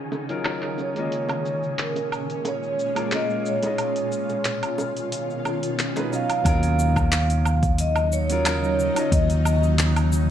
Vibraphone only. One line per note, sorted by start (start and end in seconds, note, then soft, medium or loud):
0.81 1.83 C#5 medium
1.81 2.49 A#4 medium
2.47 3.09 C#5 medium
3.15 3.48 D#5 loud
3.48 5.76 C#5 medium
6.15 7.85 F5 loud
7.81 8.14 D#5 loud
8.13 9.16 C#5 medium
9.13 9.75 D#5 medium